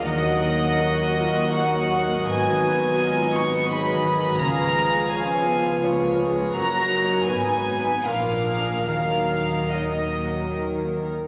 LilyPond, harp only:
\new Staff \with { instrumentName = "Harp" } { \time 3/4 \key ees \minor \tempo 4 = 81 \tuplet 3/2 { <ees bes>8 ees'8 bes8 ges'8 ees''8 ges'8 bes8 ees'8 bes8 } | \tuplet 3/2 { aes,8 ees8 ces'8 ges'8 ees''8 ges'8 ces'8 ees8 ces'8 } | \tuplet 3/2 { des8 aes8 ces'8 f'8 des''8 f'8 ces'8 aes8 ces'8 } | \tuplet 3/2 { ges,8 bes8 <ges' des''>8 aes,8 ees'8 <ges' ces''>8 bes,8 d'8 <f' bes'>8 } |
\tuplet 3/2 { ees8 bes8 ees'8 ges'8 bes'8 ges'8 ees'8 bes8 ees'8 } | }